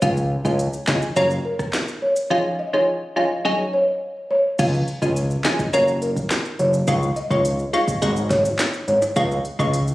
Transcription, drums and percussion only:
0.02 kick, closed hi-hat, maracas
0.17 maracas
0.45 kick, maracas
0.59 closed hi-hat, maracas
0.73 maracas
0.87 kick, snare, clap
1.02 maracas
1.16 closed hi-hat, maracas
1.30 maracas
1.59 kick, cross-stick, maracas
1.73 snare, clap, closed hi-hat, maracas
1.88 maracas
2.16 maracas
4.59 kick, closed hi-hat, crash, maracas
4.74 maracas
4.88 closed hi-hat
5.02 kick, maracas
5.16 closed hi-hat, maracas
5.30 maracas
5.45 snare, clap, closed hi-hat
5.59 kick, maracas
5.73 closed hi-hat, maracas
5.88 maracas
6.02 closed hi-hat, maracas
6.16 kick, maracas
6.30 snare, clap, closed hi-hat, maracas
6.45 maracas
6.59 closed hi-hat
6.73 maracas
6.87 kick, closed hi-hat, maracas
7.03 maracas
7.16 closed hi-hat
7.31 kick, maracas
7.45 closed hi-hat, maracas
7.59 maracas
7.74 closed hi-hat
7.88 kick, maracas
8.02 kick, closed hi-hat, maracas
8.16 maracas
8.30 kick, snare, closed hi-hat, maracas
8.45 maracas
8.59 snare, clap, closed hi-hat, maracas
8.74 maracas
8.88 closed hi-hat
9.02 high timbale, maracas
9.16 kick, closed hi-hat, maracas
9.31 maracas
9.45 closed hi-hat
9.59 kick, maracas
9.73 closed hi-hat, maracas
9.88 maracas

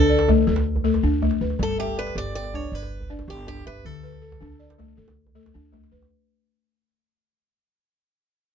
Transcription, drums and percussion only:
0.19 djembe slap
0.28 djembe tone, djembe bass
0.56 djembe slap, djembe tone
0.76 djembe bass
0.85 djembe slap
0.94 djembe slap, djembe tone
1.22 djembe tone, djembe bass
1.31 djembe slap
1.50 djembe tone
1.59 djembe bass
1.69 djembe slap
1.79 djembe slap
1.87 djembe tone
2.07 djembe slap
2.16 djembe tone
2.25 djembe slap
2.44 djembe slap
2.54 djembe tone, djembe bass
2.63 djembe slap
2.82 djembe slap, djembe tone
3.01 djembe bass
3.09 djembe slap
3.19 djembe slap, djembe tone
3.47 djembe tone, djembe bass
3.56 djembe slap
3.76 djembe tone
3.84 djembe slap, djembe bass
3.94 djembe slap
4.12 djembe tone
4.32 djembe slap, djembe bass
4.42 djembe slap, djembe tone
4.61 djembe slap
4.70 djembe slap
4.80 djembe tone, djembe bass
4.99 djembe slap
5.08 djembe slap, djembe tone
5.27 djembe bass
5.46 djembe slap, djembe tone
5.55 djembe slap
5.73 djembe slap, djembe tone, djembe bass
5.83 djembe slap
6.02 djembe slap, djembe tone

